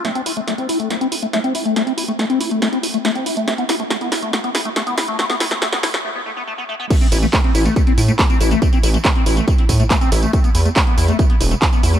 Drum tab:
CC |----------------|----------------|----------------|----------------|
HH |xxoxxxoxxxoxxxox|xxoxxxoxxxoxxxox|xxoxxxoxxxoxxxox|xxoxxxox--------|
TB |----------------|----------------|----------------|----------------|
CP |----------------|----------------|----------------|----------------|
SD |o---o---o---o---|o---o---o---o---|o-o-o-o-o-o-o-o-|oooooooo--------|
BD |----------------|----------------|----------------|----------------|

CC |x---------------|----------------|----------------|
HH |xxoxxxoxxxoxxxox|xxoxxxoxxxoxxxox|xxoxxxoxxxoxxxox|
TB |xxxxx-xxx-xxxxxx|xxxxx-xxx-xxxxxx|xxxxx-xxx-xxxxxx|
CP |----x-------x---|----x-------x---|----x-------x---|
SD |----------------|----------------|----------------|
BD |o---o---o---o---|o---o---o-o-o---|o---o---o---o---|